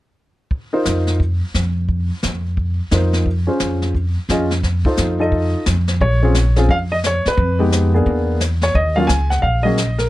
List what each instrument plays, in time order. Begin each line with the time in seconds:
0.51 brush sweep, kick
0.73 upright piano D#4 F4 A#4 C5
0.85 upright bass F2, snare, hi-hat pedal
1.07 snare
1.20 brush sweep, kick
1.54 upright bass F2, snare, hi-hat pedal
1.89 brush sweep, kick
2.23 upright bass F2, snare, hi-hat pedal
2.57 brush sweep, kick
2.91 upright bass F2, upright piano D#4 F4 A#4 C5, snare, hi-hat pedal
3.13 snare
3.26 brush sweep, kick
3.47 upright piano C#4 F4 G#4 C5
3.60 upright bass F2, snare, hi-hat pedal
3.82 snare
3.95 brush sweep, kick
4.29 upright bass F2, upright piano C#4 F4 G#4 D#5, snare, hi-hat pedal
4.51 snare
4.63 brush sweep, kick, snare
4.85 upright piano D#4 F4 A4 C5, kick
4.97 upright bass F2, snare, hi-hat pedal
5.19 upright piano D#4 F4 A4 D#5
5.32 brush sweep, kick
5.66 upright bass F2, snare, hi-hat pedal
5.88 snare
6.00 upright bass A#1, upright piano C#5, brush sweep, kick
6.23 upright piano C4 C#4 F4 G#4
6.34 snare, hi-hat pedal
6.56 upright piano C4 C#4 F4 G#4, snare
6.69 upright bass F2, upright piano F5, brush sweep, kick
6.92 upright piano D#5
7.04 upright piano C#5, snare, hi-hat pedal
7.25 upright piano B4, muted upright bass stroke, snare
7.37 upright bass F2, brush sweep, kick
7.59 upright piano G#3 B3 D#4 G4
7.72 snare, hi-hat pedal
7.94 upright piano A#3 B3 D4 G#4
8.06 upright bass E2, brush sweep, kick
8.40 snare, hi-hat pedal
8.62 upright piano C#5, snare
8.75 upright bass D#2, upright piano D#5, brush sweep, kick
8.96 upright piano F#3 A#3 C#4 F4 F5
9.07 upright bass C#2, upright piano G#5, snare, hi-hat pedal
9.30 upright piano F#5, snare
9.42 upright bass A#1, upright piano F5, brush sweep, kick
9.63 upright piano F#3 A#3 C#4 G#4 D#5
9.78 snare, hi-hat pedal
9.99 upright piano A#4, snare